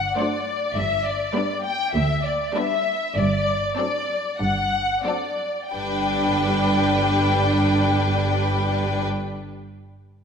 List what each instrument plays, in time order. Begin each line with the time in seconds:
Already playing: violin section F#5
0.18 viola section F#3 A3, violin section D4 C5 D5
0.76 double bass section G1, cello section G2, violin section E5
1.07 violin section D5
1.35 viola section G3 B3, violin section D4 B4
1.65 violin section G5
1.94 double bass section D2, cello section D2, violin section E5
2.23 violin section D5
2.55 viola section G3 B3, violin section D4 B4 E5
3.16 double bass section G1, cello section G2, violin section D5
3.77 viola section F#3 C4, violin section D4 A4 D5
4.41 double bass section G1, cello section G2, violin section F#5
5.05 viola section F#3 C4, violin section D4 A4 D5
5.73 double bass section G1, cello section G2, viola section G3 D4, violin section D4 B4 G5